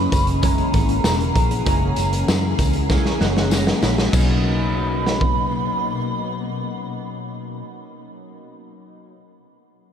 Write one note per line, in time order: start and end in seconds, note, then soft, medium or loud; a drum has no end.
0.00 0.12 F#2 medium
0.00 0.13 C#3 medium
0.00 0.10 E3 medium
0.00 0.17 E3 medium
0.00 0.18 G#3 medium
0.00 0.12 A#3 loud
0.00 0.18 A#3 medium
0.00 0.12 C#4 medium
0.00 0.22 C#4 medium
0.00 4.09 C#4 medium
0.00 0.13 G#4 medium
0.00 4.10 G#4 medium
0.00 1.64 F#5 medium
0.00 4.10 G#5 loud
0.00 0.46 B5 loud
0.11 0.61 F#1 loud
0.11 0.27 E3 medium
0.11 0.28 A#3 medium
0.11 0.27 C#4 medium
0.11 0.26 G#4 medium
0.11 kick loud
0.11 closed hi-hat loud
0.11 tambourine medium
0.27 0.59 E3 soft
0.27 0.59 A#3 soft
0.27 0.58 C#4 soft
0.27 0.57 G#4 medium
0.27 closed hi-hat medium
0.41 1.40 E3 medium
0.41 1.40 G#3 medium
0.41 1.41 A#3 medium
0.41 1.41 C#4 medium
0.41 3.53 A#5 loud
0.41 kick loud
0.41 closed hi-hat loud
0.41 tambourine soft
0.58 0.73 E3 soft
0.58 0.74 A#3 soft
0.58 0.74 C#4 soft
0.58 0.74 G#4 medium
0.58 closed hi-hat soft
0.74 0.99 G#1 loud
0.74 1.04 E3 medium
0.74 1.04 A#3 medium
0.74 1.04 C#4 medium
0.74 1.05 G#4 medium
0.74 kick medium
0.74 closed hi-hat medium
0.74 tambourine soft
0.89 closed hi-hat medium
1.04 1.29 E1 loud
1.04 1.35 F#2 medium
1.04 1.36 C#3 medium
1.04 1.34 E3 loud
1.04 1.35 A#3 medium
1.04 1.36 C#4 medium
1.04 1.36 G#4 medium
1.04 snare loud
1.04 tambourine loud
1.21 closed hi-hat soft
1.35 1.60 A#1 medium
1.35 1.51 E3 medium
1.35 1.51 A#3 medium
1.35 1.50 C#4 medium
1.35 1.49 G#4 medium
1.35 kick loud
1.35 closed hi-hat medium
1.35 tambourine soft
1.50 1.66 E3 medium
1.50 1.66 A#3 medium
1.50 1.66 C#4 medium
1.50 1.66 G#4 medium
1.50 closed hi-hat medium
1.65 1.91 F#1 loud
1.65 1.97 F#2 medium
1.65 1.97 C#3 medium
1.65 2.64 E3 medium
1.65 1.95 E3 medium
1.65 2.64 G#3 medium
1.65 1.96 A#3 medium
1.65 2.65 A#3 medium
1.65 1.97 C#4 loud
1.65 2.65 C#4 loud
1.65 1.97 G#4 loud
1.65 4.11 E5 medium
1.65 kick loud
1.65 closed hi-hat medium
1.65 tambourine soft
1.96 2.22 F#1 loud
1.96 2.12 E3 medium
1.96 2.12 A#3 medium
1.96 2.11 C#4 medium
1.96 2.10 G#4 medium
1.96 closed hi-hat medium
1.96 tambourine medium
2.11 2.27 E3 medium
2.11 2.27 A#3 medium
2.11 2.27 C#4 medium
2.11 2.28 G#4 medium
2.11 closed hi-hat medium
2.27 2.59 F#2 loud
2.27 2.53 F#2 loud
2.27 2.59 C#3 medium
2.27 2.57 E3 loud
2.27 2.58 A#3 loud
2.27 2.59 C#4 loud
2.27 2.59 G#4 loud
2.27 snare loud
2.27 tambourine medium
2.59 2.96 C#2 medium
2.59 2.74 E3 medium
2.59 2.75 A#3 medium
2.59 2.75 C#4 medium
2.59 2.74 G#4 medium
2.59 kick medium
2.59 closed hi-hat medium
2.59 tambourine medium
2.73 3.06 A#3 medium
2.73 3.04 C#4 medium
2.73 3.04 G#4 medium
2.73 closed hi-hat medium
2.78 3.06 E3 soft
2.89 3.87 E3 medium
2.89 3.88 G#3 medium
2.89 3.88 A#3 medium
2.89 3.88 C#4 loud
2.89 kick loud
2.89 snare medium
2.89 tambourine soft
3.05 3.20 E3 soft
3.05 3.21 A#3 soft
3.05 3.21 C#4 medium
3.05 3.21 G#4 medium
3.05 snare medium
3.20 3.70 F#1 loud
3.20 3.51 E3 medium
3.20 3.51 A#3 medium
3.20 3.51 C#4 medium
3.20 3.51 G#4 medium
3.20 3.50 F#5 medium
3.20 snare medium
3.20 tambourine soft
3.37 snare medium
3.51 3.82 F#2 medium
3.51 3.82 C#3 loud
3.51 3.80 E3 medium
3.51 3.82 A#3 medium
3.51 3.82 C#4 loud
3.51 3.83 G#4 medium
3.51 3.80 A#5 medium
3.51 snare medium
3.51 tambourine medium
3.67 snare medium
3.82 4.07 A#1 medium
3.82 3.98 E3 medium
3.82 3.98 A#3 medium
3.82 3.98 C#4 medium
3.82 3.97 G#4 medium
3.82 4.11 B5 medium
3.82 snare loud
3.82 tambourine soft
3.98 4.14 E3 medium
3.98 4.14 A#3 medium
3.98 4.14 C#4 medium
3.98 4.13 G#4 medium
3.98 snare loud
4.08 7.61 B2 medium
4.08 7.54 F#3 medium
4.08 7.58 A#3 medium
4.13 7.59 B1 loud
4.13 7.36 B2 medium
4.13 7.64 F#3 medium
4.13 7.36 A#3 medium
4.13 7.61 C#4 medium
4.13 7.36 D#5 medium
4.13 7.36 F#5 loud
4.13 7.37 B5 loud
4.13 kick loud
4.13 crash loud
4.13 tambourine medium
4.17 7.67 A#3 medium
4.17 7.64 D#4 medium
4.17 7.70 D#4 medium
4.22 7.72 F#4 medium
5.07 snare medium
5.21 kick medium